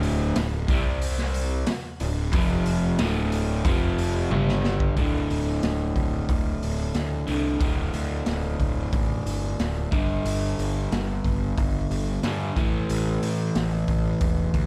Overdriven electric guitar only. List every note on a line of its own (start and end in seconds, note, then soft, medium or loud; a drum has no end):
0.00 0.35 D2 medium
0.00 0.35 A2 loud
0.00 0.36 D3 loud
0.36 0.62 D2 medium
0.36 0.62 A2 medium
0.69 1.67 C3 medium
0.69 1.67 G3 medium
0.69 1.67 C4 medium
1.69 muted overdriven electric guitar stroke medium
2.01 2.27 D2 medium
2.01 2.27 A2 medium
2.34 2.99 F2 medium
2.34 2.99 C3 medium
2.34 2.99 F3 loud
3.00 3.64 D2 medium
3.00 3.65 A2 medium
3.00 3.64 D3 medium
3.65 4.30 F2 medium
3.65 4.30 C3 medium
3.65 4.30 F3 loud
4.31 4.96 G2 medium
4.31 4.96 D3 medium
4.31 4.97 G3 loud
4.97 7.26 D2 medium
4.97 7.26 A2 medium
4.97 7.26 D3 medium
7.27 7.59 D2 medium
7.27 7.59 A2 medium
7.27 7.58 D3 medium
7.60 9.90 D2 medium
7.60 9.90 A2 medium
7.60 9.91 D3 medium
9.91 12.21 G2 medium
9.91 12.21 D3 medium
9.91 12.22 G3 medium
12.23 12.54 G2 medium
12.23 12.55 D3 medium
12.23 12.55 G3 medium
12.56 14.66 A2 medium
12.56 14.66 E3 medium
12.56 14.66 A3 loud